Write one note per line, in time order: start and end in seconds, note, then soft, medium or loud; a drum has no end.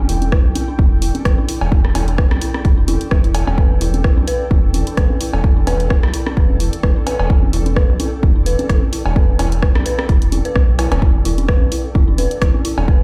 0.00 13.03 A4 medium
0.00 13.03 D5 medium
0.00 13.03 G5 medium
0.09 0.42 E1 loud
0.09 0.13 E4 medium
0.09 open hi-hat loud
0.22 closed hi-hat soft
0.22 high conga soft
0.32 0.38 E4 medium
0.32 kick loud
0.32 cross-stick medium
0.45 0.54 B1 medium
0.55 0.60 E4 medium
0.55 open hi-hat loud
0.55 high conga medium
0.68 0.72 D4 medium
0.79 1.11 E1 loud
0.79 0.83 E4 medium
0.79 kick loud
0.79 high conga soft
1.02 1.08 E4 medium
1.02 open hi-hat loud
1.15 closed hi-hat soft
1.15 high conga medium
1.25 1.36 E1 loud
1.25 1.29 E4 medium
1.25 kick loud
1.25 cross-stick loud
1.25 closed hi-hat soft
1.38 1.41 D4 medium
1.38 high conga soft
1.48 1.53 E4 medium
1.48 open hi-hat loud
1.61 1.92 E1 loud
1.61 cowbell medium
1.72 1.78 E4 medium
1.72 kick loud
1.72 high conga medium
1.85 cross-stick medium
1.95 2.28 E1 loud
1.95 1.99 E4 medium
1.95 open hi-hat loud
1.95 cowbell medium
1.95 high conga soft
2.08 2.11 D4 medium
2.08 closed hi-hat soft
2.18 2.22 E4 medium
2.18 kick loud
2.18 cross-stick medium
2.31 2.40 B1 medium
2.31 cross-stick medium
2.31 high conga medium
2.42 2.48 E4 medium
2.42 open hi-hat loud
2.54 cross-stick medium
2.54 high conga soft
2.65 2.97 E1 medium
2.65 2.69 E4 medium
2.65 kick loud
2.65 closed hi-hat soft
2.78 2.81 D4 medium
2.88 2.94 E4 loud
2.88 open hi-hat loud
2.88 high conga medium
3.01 closed hi-hat soft
3.11 3.44 E1 loud
3.11 3.15 E5 medium
3.11 kick loud
3.11 cross-stick medium
3.11 high conga soft
3.24 3.29 E4 loud
3.24 closed hi-hat soft
3.35 3.39 E4 medium
3.35 open hi-hat medium
3.35 cowbell medium
3.47 3.78 E1 medium
3.47 cowbell medium
3.47 high conga medium
3.58 3.60 B4 loud
3.58 kick loud
3.58 high conga soft
3.81 4.14 E1 loud
3.81 3.87 E4 medium
3.81 open hi-hat loud
3.94 closed hi-hat soft
3.94 high conga medium
4.04 4.08 E4 medium
4.04 kick loud
4.04 cross-stick medium
4.17 4.26 B1 medium
4.17 4.21 D4 medium
4.17 high conga soft
4.28 4.30 B4 loud
4.28 open hi-hat medium
4.51 4.83 E1 medium
4.51 4.57 E4 medium
4.51 kick loud
4.51 high conga medium
4.74 4.78 E4 medium
4.74 open hi-hat medium
4.74 high conga soft
4.87 4.90 D4 medium
4.87 closed hi-hat soft
4.97 5.08 E1 loud
4.97 5.00 B4 loud
4.97 kick loud
4.97 cross-stick medium
4.97 closed hi-hat soft
5.10 high conga medium
5.21 5.27 E4 medium
5.21 open hi-hat loud
5.33 5.64 E1 loud
5.33 cowbell medium
5.33 high conga soft
5.44 5.48 E4 medium
5.44 kick loud
5.57 5.60 D4 medium
5.67 6.00 E1 loud
5.67 5.70 B4 loud
5.67 open hi-hat medium
5.67 cowbell medium
5.67 high conga medium
5.80 closed hi-hat soft
5.90 5.97 E4 medium
5.90 kick loud
5.90 cross-stick medium
5.90 high conga soft
6.03 6.12 B1 medium
6.03 cross-stick medium
6.14 6.18 E4 medium
6.14 open hi-hat medium
6.27 6.30 D4 medium
6.27 cross-stick medium
6.27 high conga medium
6.37 6.69 E1 medium
6.37 6.39 B4 loud
6.37 kick loud
6.50 high conga soft
6.60 6.66 E4 medium
6.60 open hi-hat medium
6.73 closed hi-hat soft
6.83 6.94 E1 loud
6.83 6.88 E4 medium
6.83 kick loud
6.83 cross-stick medium
6.83 high conga medium
6.96 7.00 D4 medium
7.07 7.09 B4 loud
7.07 open hi-hat medium
7.07 cowbell medium
7.07 high conga soft
7.20 7.50 E1 loud
7.20 cowbell medium
7.30 7.36 E4 medium
7.30 kick loud
7.43 high conga medium
7.53 7.86 E1 loud
7.53 7.57 E4 medium
7.53 open hi-hat medium
7.66 7.69 D4 medium
7.66 closed hi-hat soft
7.66 high conga soft
7.76 7.79 B4 loud
7.76 kick loud
7.76 cross-stick medium
7.89 7.98 B1 medium
8.00 8.06 E4 medium
8.00 open hi-hat medium
8.00 high conga medium
8.23 8.55 E1 medium
8.23 8.27 E4 medium
8.23 kick loud
8.23 high conga soft
8.36 8.39 D4 medium
8.46 8.49 B4 loud
8.46 open hi-hat medium
8.59 closed hi-hat soft
8.59 high conga medium
8.69 8.80 E1 medium
8.69 8.76 E4 medium
8.69 kick loud
8.69 cross-stick medium
8.69 closed hi-hat soft
8.82 high conga soft
8.93 8.97 E4 medium
8.93 open hi-hat medium
9.06 9.36 E1 loud
9.06 9.09 D4 medium
9.06 cowbell medium
9.16 9.18 B4 loud
9.16 kick loud
9.16 high conga medium
9.39 9.72 E1 loud
9.39 9.45 E4 medium
9.39 open hi-hat medium
9.39 cowbell medium
9.39 high conga soft
9.52 closed hi-hat soft
9.62 9.67 E4 medium
9.62 kick loud
9.62 cross-stick medium
9.75 9.84 B1 medium
9.75 9.79 D4 medium
9.75 cross-stick medium
9.75 high conga medium
9.86 9.88 B4 loud
9.86 open hi-hat medium
9.99 cross-stick medium
9.99 high conga soft
10.09 10.42 E1 medium
10.09 10.15 E4 medium
10.09 kick loud
10.09 closed hi-hat soft
10.22 closed hi-hat medium
10.32 10.36 E4 medium
10.32 open hi-hat medium
10.32 high conga medium
10.45 10.50 B4 loud
10.45 closed hi-hat soft
10.56 10.88 B1 loud
10.56 kick loud
10.56 cross-stick medium
10.56 high conga soft
10.79 10.83 E4 loud
10.79 cross-stick medium
10.79 open hi-hat medium
10.79 cowbell medium
10.92 11.22 E1 medium
10.92 cross-stick medium
10.92 closed hi-hat soft
10.92 cowbell medium
10.92 high conga medium
11.02 11.08 E4 medium
11.02 kick loud
11.25 11.58 E1 loud
11.25 11.28 E4 loud
11.25 open hi-hat medium
11.38 11.41 D4 medium
11.38 closed hi-hat soft
11.38 high conga medium
11.49 11.51 B4 loud
11.49 kick loud
11.49 cross-stick medium
11.61 11.70 B1 medium
11.61 high conga soft
11.72 11.78 E4 medium
11.72 open hi-hat medium
11.95 12.28 E1 medium
11.95 11.98 E4 loud
11.95 kick loud
11.95 high conga medium
12.08 12.11 D4 medium
12.18 12.21 B4 loud
12.18 open hi-hat medium
12.18 high conga soft
12.31 closed hi-hat soft
12.42 12.52 E1 loud
12.42 12.48 E4 medium
12.42 kick loud
12.42 cross-stick loud
12.42 closed hi-hat soft
12.54 high conga medium
12.65 12.67 E4 loud
12.65 open hi-hat medium
12.78 13.03 E1 loud
12.78 12.81 D4 medium
12.78 cowbell medium
12.78 high conga soft
12.88 12.91 B4 loud
12.88 kick loud